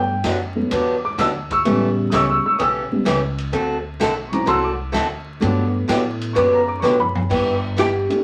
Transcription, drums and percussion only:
0.24 kick, snare, hi-hat pedal, ride
0.71 kick, ride
1.18 kick, snare, hi-hat pedal, ride
1.51 kick, ride
1.65 kick, ride
2.12 kick, snare, hi-hat pedal, ride
2.59 kick, ride
3.06 kick, snare, hi-hat pedal, ride
3.38 ride
3.53 kick, ride
4.01 kick, snare, hi-hat pedal, ride
4.33 ride
4.47 kick, ride
4.94 kick, snare, hi-hat pedal, ride
5.42 kick, ride
5.89 kick, snare, hi-hat pedal, ride
6.21 ride
6.36 kick, ride
6.84 snare, hi-hat pedal
6.99 floor tom
7.15 floor tom
7.31 kick, crash
7.78 kick, snare, hi-hat pedal, ride
8.10 ride

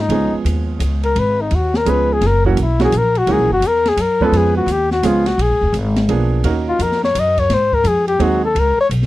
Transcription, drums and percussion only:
0.10 ride
0.46 hi-hat pedal, ride
0.80 hi-hat pedal, ride
1.03 ride
1.16 ride
1.51 ride
1.74 snare
1.86 hi-hat pedal, ride
2.21 snare, ride
2.45 kick
2.57 hi-hat pedal, ride
2.80 snare, ride
2.92 hi-hat pedal, ride
3.15 ride
3.27 ride
3.62 hi-hat pedal, ride
3.86 snare, ride
3.97 hi-hat pedal, ride
4.21 kick
4.33 ride
4.68 hi-hat pedal, ride
4.91 snare
5.03 hi-hat pedal, ride
5.26 snare, ride
5.39 ride
5.61 kick
5.74 hi-hat pedal, ride
5.96 snare, ride
6.09 ride
6.44 ride
6.79 hi-hat pedal, ride
6.92 snare
7.04 snare
7.15 hi-hat pedal, ride
7.38 kick, ride
7.50 snare, ride
7.73 kick
7.85 hi-hat pedal, ride
8.08 ride
8.20 ride
8.56 ride
8.91 hi-hat pedal, ride
9.02 snare

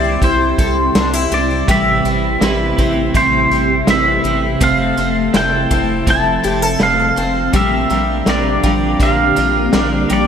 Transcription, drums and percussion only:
0.22 kick, closed hi-hat
0.58 kick, closed hi-hat
0.95 snare, closed hi-hat
1.32 closed hi-hat
1.68 kick, closed hi-hat
2.05 closed hi-hat
2.41 snare, closed hi-hat
2.78 kick, closed hi-hat
3.14 kick, closed hi-hat
3.51 closed hi-hat
3.87 snare, closed hi-hat
4.24 closed hi-hat
4.60 kick, closed hi-hat
4.97 closed hi-hat
5.34 snare, closed hi-hat
5.71 kick, closed hi-hat
6.07 kick, closed hi-hat
6.43 closed hi-hat
6.80 snare, closed hi-hat
7.16 closed hi-hat
7.53 kick, closed hi-hat
7.90 closed hi-hat
8.26 snare, closed hi-hat
8.63 kick, closed hi-hat
9.00 kick, closed hi-hat
9.36 closed hi-hat
9.73 snare, closed hi-hat
10.09 closed hi-hat

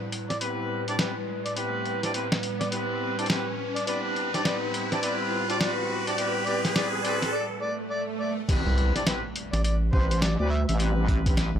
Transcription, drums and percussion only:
0.12 closed hi-hat
0.30 snare, closed hi-hat
0.41 closed hi-hat
0.88 closed hi-hat
0.99 snare, closed hi-hat
1.46 closed hi-hat
1.57 closed hi-hat
1.85 closed hi-hat
2.03 snare, closed hi-hat
2.14 closed hi-hat
2.32 snare
2.43 closed hi-hat
2.61 snare, closed hi-hat
2.72 closed hi-hat
3.19 closed hi-hat
3.26 snare, closed hi-hat
3.30 closed hi-hat
3.36 closed hi-hat
3.76 closed hi-hat
3.87 closed hi-hat
4.16 closed hi-hat
4.34 snare, closed hi-hat
4.45 snare, closed hi-hat
4.74 closed hi-hat
4.92 snare, closed hi-hat
5.03 closed hi-hat
5.50 closed hi-hat
5.61 snare, closed hi-hat
6.07 closed hi-hat
6.18 closed hi-hat
6.47 closed hi-hat
6.65 snare, closed hi-hat
6.76 snare, closed hi-hat
7.05 closed hi-hat
7.22 snare, closed hi-hat
8.49 kick, closed hi-hat, crash
8.78 closed hi-hat
8.96 snare, closed hi-hat
9.07 snare, closed hi-hat
9.36 closed hi-hat
9.53 snare, closed hi-hat
9.64 closed hi-hat
9.93 kick
10.11 closed hi-hat
10.22 snare, closed hi-hat
10.69 closed hi-hat
10.80 closed hi-hat
11.08 kick, closed hi-hat
11.26 kick, snare, closed hi-hat
11.37 snare, closed hi-hat

